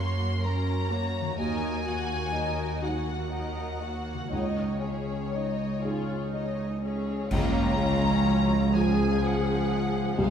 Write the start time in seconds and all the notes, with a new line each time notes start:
Already playing: F#2 C#3 A#3 F#4 C#5 C6
0.43 F#3 C#4 A#4 A#5
0.90 A#3 F#4 C#5
1.20 D#3
1.24 A#3
1.29 D#4
1.34 F#4
1.38 D#2 F#3 D#4 A#4 D#5 G#5
1.86 A#3 F#4 F#5
2.34 F#3 D#4 A#4 D#5
2.82 A#3 D#4 F#4 F#5
3.31 F#3 D#4 A#4 D#5
3.82 A#3 F#4 F#5
4.14 C#3
4.18 C#4
4.22 D#4
4.27 G#4
4.32 C#2 D#4 C#5 D#5
4.83 C#4 G#4 C#5
5.33 D#4 C#5 D#5
5.82 D#4 F4 G#4 C#5
6.33 D#4 C#5 D#5
6.83 C#4 G#4 C#5
7.31 C#2 C#3 A#3 C#4 F4 C#5 A#5, concert bass drum, crash
7.56 G#3
7.79 G#3 C#4
8.03 F3
8.27 F#3 G#4
8.52 C#5
8.75 F3 G#4 G#5
9.23 C#5 F#5
9.48 G#4
9.96 C#4
10.18 C2 C3 G#3 D#4 G#4 C5 F5